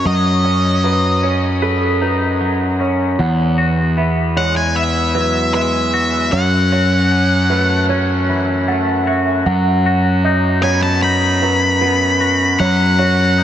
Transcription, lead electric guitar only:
0.07 2.37 D#5 medium
4.37 4.56 F#5 medium
4.57 4.75 G#5 medium
4.76 5.53 E5 medium
5.54 6.35 E5 medium
6.32 7.85 F#5 medium
10.63 10.82 G#5 medium
10.83 11.02 A5 medium
11.03 12.65 B5 medium
12.60 13.44 F#5 medium

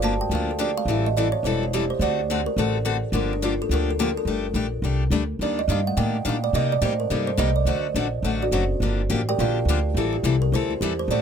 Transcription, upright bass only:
0.00 0.20 G1 medium
0.30 0.75 D2 medium
0.85 1.31 A1 medium
1.43 1.89 E1 medium
1.99 2.45 D2 medium
2.57 3.02 A1 medium
3.12 3.58 G1 medium
3.69 4.15 D2 medium
4.25 4.53 G1 medium
4.54 4.81 A#1 medium
4.82 5.10 C2 medium
5.10 5.39 D2 medium
5.39 5.67 D#2 medium
5.68 5.96 G2 medium
5.97 6.24 A2 medium
6.25 6.52 A#2 medium
6.53 6.81 C3 medium
6.81 7.09 A2 medium
7.10 7.37 G2 medium
7.38 7.65 C2 medium
7.65 7.94 D2 medium
7.94 8.22 A#1 medium
8.22 8.51 A1 medium
8.51 8.80 F#1 medium
8.80 9.08 G1 medium
9.10 9.37 A1 medium
9.38 9.65 A#1 medium
9.65 9.94 D2 medium
9.94 10.22 A1 medium
10.23 10.51 C2 medium
10.52 10.80 D2 medium
10.81 11.07 E2 medium
11.08 11.22 A2 medium

